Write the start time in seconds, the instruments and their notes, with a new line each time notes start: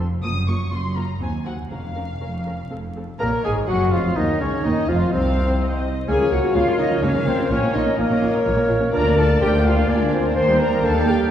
Already playing: double bass section F1, cello section F2
0.23 double bass section F#1, cello section F#2, viola section A#3 F4, violin section D#6
0.47 viola section A#3 F4, violin section C#6
0.71 double bass section F#1, cello section F#2, viola section A#3 F4, violin section C6
0.95 viola section A#3 F4, violin section A#5
1.20 cello section D#2, double bass section D#2, viola section C4 F#4, violin section G#5
1.45 viola section C4 F#4, violin section F#5
1.70 double bass section F1, cello section F2, viola section C#4 A#4, violin section F5
1.96 viola section C#4 A#4
2.21 double bass section F1, cello section F2, viola section C#4 A#4
2.45 viola section C#4 A#4
2.70 double bass section F1, cello section F2, viola section C4 A4
2.95 viola section C4 A4
3.20 double bass section A#1, cello section A#2, bassoon A#3, french horn section A#4, oboe A#4, viola section A#4, clarinet A#4, violin section C#5 A#5, flute section A#5
3.43 double bass section G#1, cello section G#2, bassoon G#3, french horn section G#4, viola section G#4, oboe G#4, clarinet G#4, violin section G#5, flute section G#5
3.68 double bass section F#1, cello section F#2, bassoon F#3, french horn section F#4, clarinet F#4, viola section F#4, oboe F#4, violin section D#5 F#5, flute section F#5
3.92 double bass section F1, cello section F2, bassoon F3, oboe F4, viola section F4, clarinet F4, french horn section F4, violin section F5, flute section F5
4.16 cello section D#2, double bass section D#2, bassoon D#3, oboe D#4, clarinet D#4, viola section D#4, french horn section D#4, violin section C#5 D#5, flute section D#5
4.40 cello section C#2, double bass section C#2, bassoon C#3, oboe C#4, french horn section C#4, clarinet C#4, viola section C#4, flute section C#5, violin section C#5
4.64 cello section D#2, double bass section D#2, bassoon D#3, oboe D#4, viola section D#4, clarinet D#4, french horn section D#4, violin section D#5, flute section D#5
4.88 double bass section F1, cello section F2, bassoon F3, oboe F4, french horn section F4, clarinet F4, viola section F4, violin section F5, flute section F5
5.12 cello section C2, double bass section C2, bassoon C3, viola section C4, oboe C4, french horn section C4, clarinet C4, flute section C5, violin section C5 F5
5.61 violin section D#5
6.08 double bass section C#2, viola section C#3 A#3, cello section C#3, bassoon A#3, french horn section G#4, clarinet C#5, violin section C#5 G#5, oboe F5, flute section G#5
6.20 cello section C#3, viola section F3 C#4
6.31 double bass section C#2, cello section C#3, viola section A#3 F4, french horn section F#4, violin section F#5, flute section F#5
6.43 cello section C#3, viola section F3 C#4
6.54 double bass section C#2, viola section C#3 A#3, cello section C#3, bassoon A#3, french horn section F4, clarinet C#5, violin section F5, flute section F5, oboe F5
6.67 cello section C#3, viola section F3 C#4
6.78 double bass section C#2, cello section C#3, viola section A#3 F4, french horn section D#4, violin section D#5, flute section D#5
6.90 cello section C#3, viola section F3 C#4
7.02 double bass section C#2, viola section C#3 A#3, cello section C#3, bassoon A#3, french horn section C#4, violin section C#5 F5, clarinet C#5, flute section C#5, oboe F5
7.14 cello section C#3, viola section F3 C#4
7.26 double bass section C#2, cello section C#3, viola section A#3 F4, french horn section C4, violin section C5, flute section C5
7.38 cello section C#3, viola section F3 C#4
7.50 double bass section A#1, cello section A#2, viola section F3 A#3, bassoon A#3, french horn section C#4, clarinet C#5, violin section C#5, flute section C#5, oboe F5
7.63 cello section A#2, viola section A#3 C#4
7.74 double bass section A#1, cello section A#2, viola section C#4 F4, french horn section D#4, violin section D#5, flute section D#5
7.85 cello section A#2, viola section A#3 C#4
7.97 double bass section A#1, cello section A#2, viola section F3 A#3, bassoon A#3, french horn section A#3, violin section A#4 D#5, flute section A#4, clarinet C#5, oboe F5
8.09 cello section A#2, viola section A#3 C#4
8.21 double bass section A#1, cello section A#2, viola section C#4 F4
8.32 cello section A#2, viola section A#3 C#4
8.44 double bass section A#1, cello section A#2, viola section F3 A#3, violin section C#5
8.56 cello section A#2, viola section A#3 C#4
8.68 double bass section A#1, cello section A#2, viola section C#4 F4
8.80 cello section A#2, viola section A#3 C#4
8.92 cello section D2, double bass section D2, bassoon A#3, viola section D4 F4, french horn section A#4, violin section D5 A#5, clarinet D5, oboe F5, flute section A#5
9.04 viola section A#3 D4
9.17 viola section D4 F4, french horn section A4, flute section A5, violin section A5
9.29 viola section A#3 D4
9.41 cello section D2, double bass section D2, viola section D4 F4, french horn section G4, violin section C5 G5, flute section G5
9.52 viola section A#3 D4
9.64 viola section D4 F4, french horn section F4, flute section F5, violin section F5
9.76 viola section A#3 D4
9.87 cello section D2, double bass section D2, bassoon A#3, viola section A#3 F4, french horn section D4, violin section A#4 D5, clarinet D5, flute section D5, oboe G#5
10.00 viola section G#3 D4
10.12 viola section A#3 F4, french horn section C4, flute section C5, violin section C5
10.23 viola section G#3 D4
10.35 double bass section D#2, cello section D#2, bassoon A#3, viola section A#3 D4, french horn section C5, clarinet D5, oboe G5, flute section C6, violin section C6
10.48 viola section G3 D#4
10.59 viola section A#3 D4, french horn section A#4, flute section A#5, violin section A#5
10.71 viola section G3 D#4
10.82 double bass section D#2, cello section D#2, viola section A#3 D4, french horn section A4, violin section F5 A5, flute section A5
10.94 viola section G3 D#4
11.06 viola section A#3 D4, french horn section G4, flute section G5, violin section G5
11.18 viola section G3 D#4